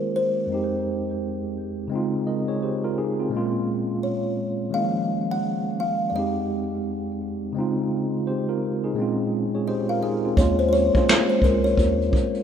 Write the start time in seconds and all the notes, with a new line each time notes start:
Already playing: D#3 G#3 A#3 C#4 F4 A#4
0.16 C5
0.47 F2 G#3 C4
0.52 D#4 G4
1.88 C#3 G#3 C4
1.94 D#4 F4
2.27 A#4 D#5
2.48 G#4 C#5
2.63 G4 C5
2.84 F4 A#4
2.98 D#4 G#4
3.19 C4 F4
3.29 A#2 G#3 A#3
3.35 C#4 F4
4.03 C#5
4.70 D#3 G#3 A#3 F5
4.76 C#4 E4
4.84 F3
5.31 F#5
5.80 F5
6.10 F2 G#3 D5
6.15 C4 D#4 G4 D#5
7.53 C#3 G#3 C4
7.58 D#4 F4
8.27 G4 C5
8.49 F4 A#4
8.84 D#4 G#4
8.94 A#2 G#3 C4
9.00 C#4 F4
9.55 G#4 C#5
9.68 G4 C5 D#5
9.89 F4 A#4 F5
10.03 D#4 G#4 D#5
10.25 C4 F4
10.37 D#2 G#3 A#3 C#4 F4 C#5, kick, closed hi-hat
10.58 C5, closed hi-hat
10.69 C5
10.73 C#5, closed hi-hat
10.94 G#3 A#3 C#4 F4, kick, closed hi-hat
11.08 finger snap, snare, closed hi-hat
11.30 C5, closed hi-hat
11.42 C#2 A#4, kick, closed hi-hat
11.64 C#5, closed hi-hat
11.77 D#2, kick, closed hi-hat
12.02 closed hi-hat
12.13 kick, closed hi-hat
12.34 closed hi-hat